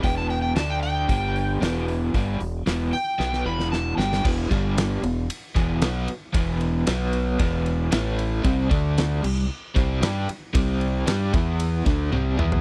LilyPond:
<<
  \new Staff \with { instrumentName = "Electric slide guitar" } { \time 4/4 \key e \minor \tempo 4 = 114 g''16 a''16 g''16 g''16 a''16 g''16 g''2 r8 | r4. g''4 b''8 a''8 g''8 | r1 | r1 |
r1 | r1 | }
  \new Staff \with { instrumentName = "Overdriven electric guitar" } { \clef bass \time 4/4 \key e \minor <e, b, e>4 <d a d'>4 <g, d g>4 <e, b, e>4 | <g, d g>8 <e, b,>8 <e, b, e>8 r8 <b, fis b>8 <e, b, e>4 <g, d g>8 | <e, b, e>8 <g, d g>4 <e, b,>8 r8 <e, b, e>8 <b, fis b>8 r8 | <e, b, e>4 <b, fis b>4 <e, b, e>4 <a, e a>4 |
<c g c'>8 <d a d'>4 <c g>8 r8 <c g c'>8 <g d' g'>8 r8 | <c g c'>4 <g d' g'>8 <e b e'>4 <d a d'>8 <c g c'>8 <e b e'>8 | }
  \new Staff \with { instrumentName = "Fingered electric bass" } { \clef bass \time 4/4 \key e \minor e,,4 d,4 g,,4 e,,4 | g,,8 e,,8 e,,8 r8 b,,8 e,,4 g,,8 | e,,8 g,,4 e,,8 r8 e,,8 b,,8 r8 | e,,4 b,,4 e,,4 a,,4 |
c,8 d,4 c,8 r8 c,8 g,8 r8 | c,4 g,8 e,4 d,8 c,8 e,8 | }
  \new DrumStaff \with { instrumentName = "Drums" } \drummode { \time 4/4 <hho bd>8 hho8 <hho sn>8 hho8 <hho bd>8 hho8 <hho sn>8 hho8 | <hho bd>8 hho8 <hho sn>8 hho8 sn16 sn8 sn16 sn8 sn16 sn16 | <cymc bd>8 <bd cymr>8 <cymr sn>8 cymr8 cymr8 <bd cymr sn>8 <cymr sn>8 cymr8 | <bd cymr>8 cymr8 <cymr sn>8 cymr8 <bd cymr>8 cymr8 <cymr sn>8 cymr8 |
<bd cymr>8 <bd cymr>8 <cymr sn>8 cymc8 r8 <bd cymr sn>8 <cymr sn>8 cymr8 | <bd cymr>8 cymr8 <cymr sn>8 <bd cymr>8 cymr8 <bd cymr sn>8 tommh8 toml16 tomfh16 | }
>>